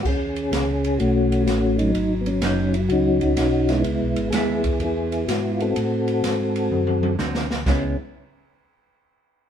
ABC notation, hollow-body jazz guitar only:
X:1
M:4/4
L:1/8
Q:"Swing" 1/4=126
K:C#m
V:1 name="Hollow-body jazz guitar"
z8 | z2 [F,CD] z4 z | z2 [G,B,E] z4 z | z6 [=D,A,=CF] z |
[G,B,E] z6 z |]